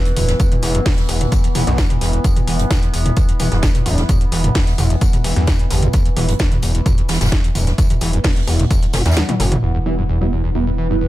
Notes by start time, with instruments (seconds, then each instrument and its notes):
Already playing: synth drone E3 B3
0.05 acid bass E2, closed hi-hat
0.17 analog synth bass D1, acid bass E2, mid tom, open hi-hat, tambourine
0.28 acid bass E2, snare, closed hi-hat
0.40 acid bass E2, kick, closed hi-hat, tambourine
0.52 acid bass E2, closed hi-hat, mid tom
0.62 analog synth bass E1, acid bass E3, open hi-hat, tambourine
0.75 acid bass F#2, closed hi-hat
0.85 acid bass E2, kick, snare, closed hi-hat, mid tom, open hi-hat
0.98 acid bass E2, snare, closed hi-hat
1.09 analog synth bass E1, acid bass E2, open hi-hat, tambourine
1.21 acid bass E2, closed hi-hat, mid tom
1.32 acid bass E2, kick, closed hi-hat, tambourine
1.44 acid bass E2, closed hi-hat
1.55 analog synth bass E1, acid bass E3, mid tom, open hi-hat, tambourine
1.67 analog synth bass B1, acid bass F#2, snare, closed hi-hat
1.78 acid bass E2, kick, snare, closed hi-hat, tambourine
1.90 acid bass E2, closed hi-hat, mid tom
2.01 analog synth bass E1, acid bass E2, snare, open hi-hat, tambourine
2.13 acid bass E2, closed hi-hat
2.24 acid bass E2, kick, closed hi-hat, tambourine
2.36 acid bass E2, closed hi-hat, mid tom
2.47 analog synth bass E1, acid bass E3, open hi-hat, tambourine
2.59 acid bass F#2, closed hi-hat
2.70 acid bass E2, kick, snare, closed hi-hat, mid tom, tambourine
2.82 acid bass E2, closed hi-hat
2.93 analog synth bass E1, acid bass E2, open hi-hat, tambourine
3.06 acid bass E2, closed hi-hat, mid tom
3.17 acid bass E2, kick, closed hi-hat, tambourine
3.29 acid bass E2, closed hi-hat
3.39 analog synth bass E1, acid bass E3, mid tom, open hi-hat, tambourine
3.51 analog synth bass E1, acid bass F#2, snare, closed hi-hat
3.62 acid bass E2, kick, snare, closed hi-hat, tambourine
3.75 acid bass E2, closed hi-hat, mid tom
3.86 analog synth bass D1, acid bass E2, open hi-hat, tambourine
3.97 acid bass E2, snare, closed hi-hat
4.09 acid bass E2, kick, closed hi-hat, mid tom, tambourine
4.21 acid bass E2, closed hi-hat
4.32 analog synth bass E1, acid bass E3, open hi-hat, tambourine
4.44 acid bass F#2, closed hi-hat, mid tom
4.55 acid bass E2, kick, snare, closed hi-hat, open hi-hat
4.67 acid bass E2, snare, closed hi-hat
4.78 analog synth bass E1, acid bass E2, mid tom, open hi-hat, tambourine
4.90 acid bass E2, closed hi-hat
5.01 acid bass E2, kick, closed hi-hat, tambourine
5.13 acid bass E2, closed hi-hat, mid tom
5.24 analog synth bass E1, acid bass E3, open hi-hat, tambourine
5.36 analog synth bass E2, acid bass F#2, snare, closed hi-hat
5.47 acid bass E2, kick, snare, closed hi-hat, mid tom, tambourine
5.59 acid bass E2, closed hi-hat
5.70 analog synth bass G1, acid bass E2, snare, open hi-hat, tambourine
5.83 acid bass E2, closed hi-hat, mid tom
5.93 acid bass E2, kick, closed hi-hat, tambourine
6.05 acid bass E2, closed hi-hat
6.17 analog synth bass E1, acid bass E3, mid tom, open hi-hat, tambourine
6.29 acid bass F#2, closed hi-hat
6.39 acid bass E2, kick, snare, closed hi-hat, tambourine
6.51 acid bass E2, closed hi-hat, mid tom
6.62 analog synth bass E1, acid bass E2, open hi-hat, tambourine
6.75 acid bass E2, closed hi-hat
6.86 acid bass E2, kick, closed hi-hat, mid tom, tambourine
6.98 acid bass E2, closed hi-hat
7.08 analog synth bass E1, acid bass E3, snare, open hi-hat, tambourine
7.14 snare, tambourine
7.21 analog synth bass E1, acid bass F#2, snare, closed hi-hat, mid tom, tambourine
7.26 snare, tambourine
7.32 acid bass E2, kick, snare, closed hi-hat
7.44 acid bass E2, closed hi-hat
7.55 analog synth bass D1, acid bass E2, mid tom, open hi-hat, tambourine
7.67 acid bass E2, snare, closed hi-hat
7.78 acid bass E2, kick, closed hi-hat, tambourine
7.90 acid bass E2, closed hi-hat, mid tom
8.01 analog synth bass E1, acid bass E3, open hi-hat, tambourine
8.13 acid bass F#2, closed hi-hat
8.24 acid bass E2, kick, snare, closed hi-hat, mid tom, open hi-hat
8.36 acid bass E2, snare, closed hi-hat
8.47 analog synth bass E1, acid bass E2, open hi-hat, tambourine
8.59 acid bass E2, closed hi-hat, mid tom
8.70 acid bass E2, kick, closed hi-hat, tambourine
8.82 acid bass E2, closed hi-hat
8.93 analog synth bass F#1, acid bass B2, snare, mid tom, open hi-hat, tambourine
9.05 analog synth bass E2, acid bass E2, snare, closed hi-hat, tambourine
9.11 snare, tambourine
9.16 acid bass E2, snare, closed hi-hat, high tom, tambourine
9.29 acid bass E3, closed hi-hat, mid tom, high tom
9.40 analog synth bass F#1, acid bass A2, snare, open hi-hat, tambourine
9.52 acid bass E3, closed hi-hat, mid tom
9.63 analog synth bass E1, acid bass E2, ambient pad E4
9.75 acid bass E2
9.86 acid bass E3, synth stab G3 B3 E4
9.93 ambient pad B4
9.98 acid bass F#2
10.09 acid bass E2
10.21 acid bass E2, synth stab G3 B3 E4
10.32 acid bass E2
10.44 acid bass E2, ambient pad G5
10.55 acid bass E2, synth stab G3 B3 E4
10.67 acid bass E2
10.78 acid bass E3
10.90 acid bass F#2, synth stab G3 B3 E4
11.01 acid bass E2